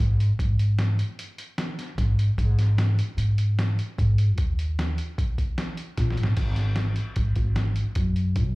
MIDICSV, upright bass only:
0, 0, Header, 1, 2, 480
1, 0, Start_track
1, 0, Tempo, 398671
1, 464, Time_signature, 5, 2, 24, 8
1, 10294, End_track
2, 0, Start_track
2, 0, Title_t, "Upright bass"
2, 0, Program_c, 0, 32
2, 0, Note_on_c, 0, 44, 86
2, 355, Note_off_c, 0, 44, 0
2, 469, Note_on_c, 0, 44, 81
2, 1199, Note_off_c, 0, 44, 0
2, 2383, Note_on_c, 0, 44, 83
2, 2749, Note_off_c, 0, 44, 0
2, 2865, Note_on_c, 0, 44, 98
2, 3597, Note_off_c, 0, 44, 0
2, 3817, Note_on_c, 0, 44, 75
2, 4551, Note_off_c, 0, 44, 0
2, 4793, Note_on_c, 0, 44, 79
2, 5272, Note_off_c, 0, 44, 0
2, 5272, Note_on_c, 0, 39, 93
2, 6001, Note_off_c, 0, 39, 0
2, 7194, Note_on_c, 0, 34, 77
2, 7406, Note_off_c, 0, 34, 0
2, 7431, Note_on_c, 0, 32, 78
2, 7644, Note_off_c, 0, 32, 0
2, 7669, Note_on_c, 0, 32, 74
2, 8399, Note_off_c, 0, 32, 0
2, 8626, Note_on_c, 0, 32, 74
2, 8809, Note_off_c, 0, 32, 0
2, 8866, Note_on_c, 0, 32, 78
2, 9415, Note_off_c, 0, 32, 0
2, 9581, Note_on_c, 0, 42, 86
2, 10062, Note_on_c, 0, 35, 81
2, 10080, Note_off_c, 0, 42, 0
2, 10294, Note_off_c, 0, 35, 0
2, 10294, End_track
0, 0, End_of_file